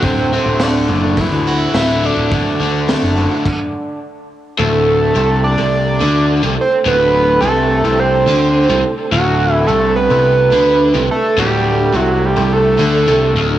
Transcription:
Already playing: D3 A3 F#4 A4 C5 F#5
0.03 D1 D2 C4, kick, open hi-hat
0.33 D3 C4
0.46 D1
0.60 A3 D4, snare, open hi-hat
0.88 F#1 A2
1.17 D3 E4, kick, open hi-hat
1.31 D2
1.47 F#4
1.74 D1 A3, snare, open hi-hat
2.04 D3 D4
2.17 D1
2.31 D2 D4, kick, open hi-hat
2.60 D2 D3
2.89 A3, snare, open hi-hat
3.03 F#1
3.17 A2
3.46 kick, crash
4.57 D1 D2 A3 D4 A4
5.15 C2 C3
5.44 D5
5.58 C2 C3
6.00 D2 D3
6.43 C2 C3
6.61 C5
6.85 D1 D2 B4
7.41 C2 C3 A4
7.84 C2 C3
7.99 C5
8.26 D2 D3
8.69 C2 C3
9.12 D1 D2 F#4
9.53 E4
9.67 C2 C3 A4
9.96 B4
10.10 C2 C3
10.52 D2 D3
10.94 C2 C3
11.11 A4
11.38 D1 D2 G4
11.94 C2 C3 F#4
12.25 G4
12.36 C2 C3
12.53 A4
12.79 D2 D3
13.07 C2 C3
13.35 D1 D2

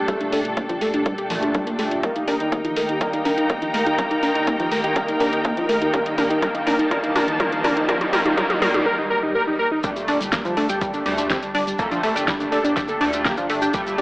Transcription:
Already playing: A#2 A3 D4 G4 A4 G5 A5
0.08 A#2 G3 A3 A4, kick, closed hi-hat
0.21 D4, closed hi-hat
0.32 D4 A4, open hi-hat
0.45 D4, closed hi-hat
0.57 A#3 D4, kick, closed hi-hat
0.69 F3 D4, closed hi-hat
0.81 A3 A4, open hi-hat
0.94 D4 G4, closed hi-hat
1.06 G3 D4, kick, closed hi-hat
1.18 G4, closed hi-hat
1.30 A#2 F3 G3 A3 D4, open hi-hat
1.43 D4 G4, closed hi-hat
1.54 G3 D4, kick, closed hi-hat
1.67 A#3 D4, closed hi-hat
1.79 A#2 G3 A3 D4, open hi-hat
1.91 D4, closed hi-hat
2.03 D#3 G3 A#3 D#4 A#4, kick, closed hi-hat, mid tom, riser
2.16 D#4, closed hi-hat
2.24 D4 A#4 G5, open hi-hat
2.31 A#4 A#5
2.40 D#4, closed hi-hat
2.52 A#3 D#4, kick, closed hi-hat, mid tom
2.65 F3 D#4, closed hi-hat
2.76 A3 A#4, open hi-hat
2.89 D#4 G4, closed hi-hat
3.01 D#3 G3 A#3 A#4, kick, closed hi-hat, mid tom
3.13 D#4, closed hi-hat
3.25 D4 A#4, open hi-hat
3.38 D#4, closed hi-hat
3.50 A#3 D#4, kick, closed hi-hat, mid tom
3.62 F3 D#4, closed hi-hat
3.74 A3 A#4, open hi-hat
3.86 D#4 G4, closed hi-hat
3.98 D#3 G3 A#3 A#4, kick, closed hi-hat, mid tom
4.11 D#4, closed hi-hat
4.23 D4 A#4, open hi-hat
4.35 D#4, closed hi-hat
4.47 A#3 D#4, kick, closed hi-hat, mid tom
4.60 F3 D#4, closed hi-hat
4.72 A3 A#4, open hi-hat
4.84 D#4 G4, closed hi-hat
4.96 D#3 G3 A#3 A#4, kick, closed hi-hat, mid tom
5.08 D#4, closed hi-hat
5.20 D4 A#4, open hi-hat
5.33 D#4, closed hi-hat
5.45 A#3 D#4, kick, closed hi-hat, mid tom
5.57 F3 D#4, closed hi-hat
5.69 A3 A#4, open hi-hat
5.82 D#4 G4, closed hi-hat
5.94 D#3 G3 A#3 A#4, kick, closed hi-hat, mid tom
6.06 D#4, closed hi-hat
6.18 D4 A#4, open hi-hat, mid tom
6.30 D#4 A5, closed hi-hat
6.42 D#3 G3 A#3 A#4, kick, closed hi-hat, mid tom
6.55 D#4, closed hi-hat
6.67 D4 A#4, open hi-hat, mid tom
6.79 D#4, closed hi-hat
6.91 D#3 G3 A#3 A#4, kick, closed hi-hat, mid tom
7.03 D#4, closed hi-hat
7.15 D4 A#4, open hi-hat, mid tom
7.28 D#4, closed hi-hat
7.40 D#3 G3 A#3 A#4, kick, closed hi-hat, mid tom
7.52 D#4, closed hi-hat
7.64 D4 A#4, open hi-hat, mid tom
7.77 D#4, closed hi-hat
7.88 D#3 G3 A#3 A#4, kick, closed hi-hat, mid tom
8.01 D#4, closed hi-hat, mid tom
8.13 D#3 G3 A#3 A#4, open hi-hat, mid tom
8.25 D#4, closed hi-hat, mid tom
8.37 D#3 G3 A#3 A#4, kick, closed hi-hat, mid tom
8.49 D#4, closed hi-hat, mid tom
8.62 D#3 G3 A#3 A#4, open hi-hat, mid tom
8.74 D#4, closed hi-hat, mid tom
8.86 A#4, swell
8.99 D#4
9.10 A#4
9.23 D#4
9.35 A#4
9.47 D#4
9.59 A#4
9.72 D#4
9.84 G1 A#2 G3 A3 D4 G4 A5, kick, closed hi-hat, shaker
9.96 G3, closed hi-hat, shaker
10.08 D4 D5, open hi-hat
10.21 G1 G3, closed hi-hat, shaker
10.32 G3 A#3 A#4, kick, snare, closed hi-hat, shaker
10.45 F3 G3 F4, closed hi-hat, shaker
10.57 A3 D4 A4, open hi-hat
10.69 G1 G3 G4 G5, closed hi-hat, shaker
10.81 G3 G4, kick, closed hi-hat, shaker
10.94 D4, closed hi-hat, shaker
11.06 D2 A#2 G3 A3 D4 D5, open hi-hat
11.18 G3 D4 D5, closed hi-hat, shaker
11.30 G3 C4 G4, kick, snare, closed hi-hat, shaker
11.42 G1 G3, closed hi-hat, shaker
11.55 G3 D4 D5, open hi-hat
11.67 G3, closed hi-hat, shaker
11.79 G1 A#2 G3 A3 A#3 A4 A#4, kick, closed hi-hat, shaker
11.91 F3 D4 F4, closed hi-hat, shaker
12.03 A3 A4, open hi-hat
12.15 G1 D4 G4 G5, closed hi-hat, shaker
12.28 G3 D4 G4, kick, snare, closed hi-hat, shaker
12.40 D4, closed hi-hat, shaker
12.52 D4 A4 D5, open hi-hat
12.64 G1 D4 D5, closed hi-hat, shaker
12.76 G3 D4 G4, kick, snare, closed hi-hat, shaker
12.88 A4, closed hi-hat, shaker
13.01 D2 A#2 G3 A3 D4 D5, open hi-hat
13.13 D4, closed hi-hat, shaker
13.25 A#3 G4 A#4, kick, snare, closed hi-hat, shaker
13.37 G1 F3 D4 F4, closed hi-hat, shaker
13.49 A3 D4 A4, open hi-hat
13.62 D4 G4 G5, closed hi-hat, shaker
13.73 G1 A#2 G3 A3 G4, kick, closed hi-hat, shaker
13.87 G3, closed hi-hat, shaker
13.98 D4 G4 D5, open hi-hat

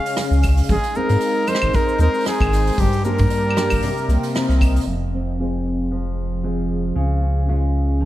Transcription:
Already playing: C#3 G#3 C#4 G#4 F5
0.06 open hi-hat, cabasa
0.16 C#4, cross-stick, open hi-hat, cabasa
0.31 C#2, cabasa
0.42 kick, open hi-hat, cabasa, claves
0.57 open hi-hat, cabasa
0.63 open hi-hat
0.69 G#1 G#3 G#4, kick, open hi-hat, cabasa
0.81 D#4, open hi-hat, cabasa
0.95 C4 D#4 A#4, cabasa
1.09 G#2, open hi-hat, cabasa
1.20 A#4, open hi-hat, cabasa
1.47 C4 D#4 A#4 C5, open hi-hat, cabasa, claves
1.55 cross-stick
1.62 G#1 C5, kick, cabasa, claves
1.73 D#4 A#4, kick, open hi-hat, cabasa
1.89 cabasa
1.98 D#2 C4 A#4, open hi-hat, cabasa
2.13 open hi-hat, cabasa
2.16 open hi-hat
2.18 open hi-hat
2.21 open hi-hat
2.23 open hi-hat
2.26 D#4 G#4, cross-stick, open hi-hat, cabasa
2.40 G#1, kick, cabasa, claves
2.53 open hi-hat, cabasa
2.67 open hi-hat, cabasa
2.72 open hi-hat
2.78 G1 G2 G3 G4, kick, open hi-hat, cabasa
2.92 open hi-hat, cabasa
3.05 A#3 D4 G4 A#4, cabasa
3.18 G2, kick, open hi-hat
3.26 G4 D5, open hi-hat, cabasa
3.50 claves
3.56 A#3 D4 G4, cross-stick, open hi-hat, cabasa
3.70 G1, kick, open hi-hat, cabasa, claves
3.82 C3, open hi-hat, cabasa
3.97 C4, cabasa
4.08 C2 A#3, open hi-hat, cabasa
4.23 open hi-hat, cabasa
4.30 D#5
4.34 C4, cross-stick, open hi-hat, cabasa
4.49 C2, cabasa
4.61 kick, open hi-hat, cabasa, claves
4.76 open hi-hat, cabasa
4.81 open hi-hat
4.86 F1 F2 F3
5.14 C4
5.39 G#3 C4 F4
5.43 G#4
5.82 F5
5.91 F3
6.43 G#3 C4 F4
6.94 C#2 C#3
7.22 C#4
7.48 G#3 C#4 F4
8.00 F3

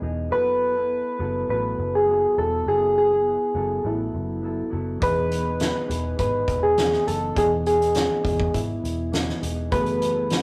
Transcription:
0.02 E1 E3 B3 D#4 G#4
0.31 F#1 F#3 B3 E4 A4 B4
0.75 B3 E4 A4
1.19 F#1 F#3 B3 E4 A4
1.49 A1 F#3 B3 E4 A4 B4
1.78 F#1
1.95 G#4
2.08 F#3 B3 E4 A4
2.38 E1 F#3 B3 E4 A4
2.66 F#1 F#3 B3 E4 G#4 A4
2.98 G#4
3.12 B3 E4
3.55 F#1 F#3 B3 E4 A4
3.84 A1 F#3 B3 E4 A4
4.14 F#1
4.42 F#3 B3 E4 A4
4.70 F#1 F#3 B3 E4 A4
4.99 E1 E3 B3 D#4 G#4, kick, closed hi-hat
5.03 G#4 B4
5.32 closed hi-hat
5.43 B3 D#4 G#4
5.60 snare, closed hi-hat
5.88 E1 E3 B3 D#4 G#4, closed hi-hat
6.16 G#1 E3 B3 D#4 G#4 B4, kick, closed hi-hat
6.48 E1, kick, closed hi-hat
6.63 G#4
6.76 E3 B3 D#4 G#4, snare, closed hi-hat
6.93 snare
7.06 F#1 E3 B3 D#4 G#4 A4, closed hi-hat
7.35 E1 E3 B3 D#4 G#4 D#5, kick, closed hi-hat
7.40 G#4
7.66 G#4, closed hi-hat
7.79 B3 D#4 G#4, closed hi-hat
7.95 snare, closed hi-hat
8.23 E1 E3 B3 D#4 G#4, kick, closed hi-hat
8.40 kick
8.52 G#1 E3 B3 E4 G#4, kick, closed hi-hat
8.84 E1, closed hi-hat
9.12 E3 B3 D#4 G#4, snare, closed hi-hat
9.29 snare
9.41 E1 E3 B3 D#4 G#4, closed hi-hat
9.70 F#1 E3 F#3 A3 B3 E4 A4 B4, kick, closed hi-hat
9.75 G#4
9.86 closed hi-hat
10.02 closed hi-hat
10.15 B3 E4 A4
10.30 snare, closed hi-hat

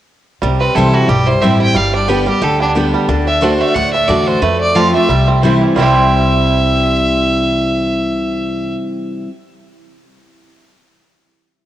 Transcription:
0.42 C2 C3 G3
0.60 C4 B4
0.74 C2 E3 G3 C4 E4 A4 C5 G5
0.94 E3 F#4
1.08 B1 G2 G3 G4
1.27 E4 C5
1.41 A1 E3 G3 C4 E4 G4 C5 E5 G5
1.60 E4 G5
1.75 G1 G2 G3 F5
1.94 D4 D5
2.08 D3 G3 B3 G4 B4 D5 G5
2.26 G3 B3 G4
2.41 D2 D3 G4 A4
2.60 B3 D4
2.75 D3 G3 B3 D4 G4 D5 G5
2.94 G3
3.08 D2 D3 D4
3.27 D4 E5
3.41 D3 A3 D4 F#4 C5 D5 A5
3.61 A3 E5
3.74 D2 A2 D4 F#5
3.93 D4 E5
4.08 E2 D3 A3 D4 F#4 D5 A5
4.27 D4 C5
4.42 F2 A3 B4
4.60 D5
4.75 F3 A3 C4 F4 C5 F5 A5
4.94 A3 C4 F4 E5
5.09 C2 C3 G3
5.28 C4
5.42 E3 G3 C4 E4 C5 G5
5.61 E3
5.75 C2 C3 E3 G3 C4 E4 C5 E5 G5
5.79 C4 E4 G4

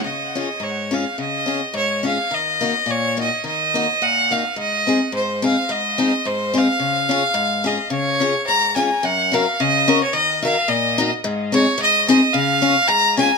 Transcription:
0.04 C#3 D#5
0.35 C#4 F4 G#4
0.60 G#2 C#5
0.91 C#4 F4 G#4 F5
1.18 C#3 D#5
1.46 C#4 F4 G#4
1.74 G#2 C#5
2.03 C#4 F4 G#4 F5
2.31 D#3 D#5
2.61 A#3 D#4 F#4
2.86 A#2
2.91 C#5
3.17 A#3 D#4 F#4
3.21 D#5
3.44 D#3 D#5
3.74 A#3 D#4 F#4
4.02 A#2 F#5
4.31 A#3 D#4 F#4 F5
4.56 G#2 D#5
4.87 C4 D#4 G#4
5.12 G#2 C5
5.42 C4 D#4 G#4 F5
5.69 G#2 D#5
5.98 C4 D#4 G#4
6.25 G#2 C5
6.54 C4 D#4 G#4 F5
6.80 C#3
7.09 C#4 F4 G#4
7.34 G#2
7.64 C#4 F4 G#4 D#5
7.90 C#3 C#5
8.20 C#4 F4 G#4
8.47 G#2 A#5
8.76 C#4 F4 G#4 G#5
9.03 F#2 F#5
9.32 C#4 F#4 A#4 F5
9.60 C#3 D#5
9.88 C#4 F#4 A#4
10.04 C#5
10.13 D#3 D#5
10.42 D#4 F#4 A#4 F5
10.68 A#2 D#5
10.98 D#4 F#4 A#4
11.24 G#2
11.52 C4 D#4 G#4 C#5
11.78 G#2
11.82 D#5
12.08 C4 D#4 G#4 D#5
12.34 C#3 F5
12.62 C#4 F4 G#4
12.88 G#2 A#5
13.17 C#4 F4 G#4 G#5

